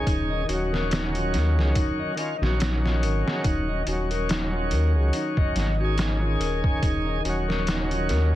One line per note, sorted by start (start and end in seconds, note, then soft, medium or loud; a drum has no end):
0.00 0.42 D#3 medium
0.00 0.44 C#4 medium
0.00 0.46 G#4 medium
0.07 0.44 D#1 loud
0.07 0.28 D#4 medium
0.07 kick loud
0.07 closed hi-hat medium
0.30 0.48 D#5 medium
0.45 1.35 D#1 medium
0.45 2.12 D#3 loud
0.45 0.70 F#4 medium
0.49 2.14 C#4 medium
0.49 closed hi-hat medium
0.53 2.16 F#3 loud
0.72 0.90 A#4 medium
0.72 snare soft
0.91 1.12 D#4 medium
0.91 snare loud
0.91 closed hi-hat medium
1.15 1.25 F4 medium
1.15 closed hi-hat soft
1.33 1.58 D#2 loud
1.33 1.54 A#4 loud
1.33 snare soft
1.33 closed hi-hat medium
1.57 1.73 C#2 medium
1.57 1.68 G#4 medium
1.57 snare soft
1.75 1.97 D#4 medium
1.75 kick loud
1.75 closed hi-hat medium
1.99 2.17 D#5 medium
2.16 2.35 D#3 medium
2.16 2.36 C#4 medium
2.16 2.39 D#5 medium
2.16 closed hi-hat medium
2.20 2.37 F4 medium
2.38 3.04 A#1 medium
2.38 3.81 D#3 medium
2.38 2.58 F#4 medium
2.42 3.83 C#4 medium
2.42 snare soft
2.47 3.85 F#3 loud
2.60 2.81 D#4 medium
2.60 snare loud
2.60 closed hi-hat medium
2.83 2.94 F4 medium
2.83 snare soft
3.02 3.23 G#1 loud
3.02 3.24 A#4 loud
3.02 closed hi-hat medium
3.26 3.37 G#4 medium
3.26 snare medium
3.44 3.82 D#1 loud
3.44 3.66 D#4 medium
3.44 kick loud
3.44 closed hi-hat medium
3.69 3.86 D#5 medium
3.83 4.72 D#1 loud
3.83 5.72 D#3 medium
3.83 closed hi-hat medium
3.87 5.75 C#4 medium
3.87 4.09 F#4 medium
3.92 5.77 F#3 medium
4.11 4.28 A#4 medium
4.11 closed hi-hat soft
4.29 4.50 D#4 medium
4.29 snare loud
4.29 closed hi-hat medium
4.53 4.64 F4 medium
4.71 4.96 D#2 loud
4.71 4.93 A#4 loud
4.71 closed hi-hat medium
4.94 5.11 C#2 medium
4.94 5.06 G#4 medium
5.13 5.35 D#4 medium
5.13 closed hi-hat medium
5.37 5.55 D#5 medium
5.37 kick loud
5.55 6.37 G#1 medium
5.55 5.78 D#5 medium
5.55 snare soft
5.55 closed hi-hat medium
5.76 7.18 D#3 medium
5.80 7.21 C#4 medium
5.80 5.97 F#4 medium
5.84 7.23 G#4 medium
5.98 6.20 D#4 medium
5.98 snare loud
5.98 closed hi-hat medium
6.22 6.33 F4 medium
6.40 6.61 D#1 loud
6.40 6.62 A#4 medium
6.40 closed hi-hat medium
6.64 6.75 G#4 medium
6.64 kick loud
6.83 7.21 D#1 loud
6.83 7.04 D#4 medium
6.83 kick loud
6.83 closed hi-hat medium
7.07 7.24 D#5 medium
7.20 8.35 D#3 loud
7.24 8.11 D#1 medium
7.24 8.35 C#4 medium
7.24 7.46 F#4 medium
7.24 closed hi-hat medium
7.29 8.35 F#3 loud
7.48 7.66 A#4 medium
7.48 snare soft
7.67 7.88 D#4 medium
7.67 snare loud
7.67 closed hi-hat medium
7.91 8.02 F4 medium
7.91 closed hi-hat soft
8.09 8.35 D#2 loud
8.09 8.31 A#4 loud
8.09 snare soft
8.09 closed hi-hat medium